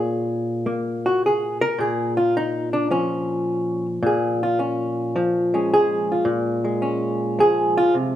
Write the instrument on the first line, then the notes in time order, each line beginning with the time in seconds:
hollow-body jazz guitar
Already playing: A#2 A#3 G#4 C#5
0.66 A#3
1.06 F#4
1.26 G#4
1.61 A#4
1.78 A#2 G#4
2.17 F4
2.37 D#4
2.73 D4
2.91 F3 C#4
4.03 A#2 G#4
4.43 F4
4.59 C#4
5.16 F3
5.54 G#3 C#4 G#4
5.74 G#4
6.12 F4
6.25 A#2
6.64 G#3
6.82 C#4
7.39 F3 G#4
7.78 F4
7.94 C3